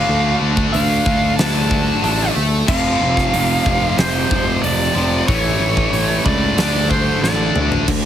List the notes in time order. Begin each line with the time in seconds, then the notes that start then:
Already playing: D3 A3 D4 F5
0.09 D2
0.41 D2
0.57 kick
0.72 D2 F5, open hi-hat
1.06 D2, kick
1.36 D2 A5, snare, open hi-hat
1.71 kick
2.02 A1 D3 A3 D4, open hi-hat
2.36 D2
2.67 F1 F2 C3 F3 F5, kick, crash
3.01 F1
3.17 kick, snare
3.34 F1, open hi-hat
3.66 F1, kick
3.97 F1 C5, snare, open hi-hat
4.31 F1, kick
4.62 F1 D5, open hi-hat
4.95 F1 F2 C3 F3
5.27 A1 A2 E3 A3 C#5, kick, open hi-hat
5.60 A1
5.77 kick
5.92 A1, open hi-hat
6.25 C#2 D5, kick
6.57 D2 D3 A3 D4, snare, open hi-hat
6.91 C5, kick
7.23 A1 D5, snare
7.56 D2, mid tom
7.72 floor tom
7.87 D2 D3, kick, crash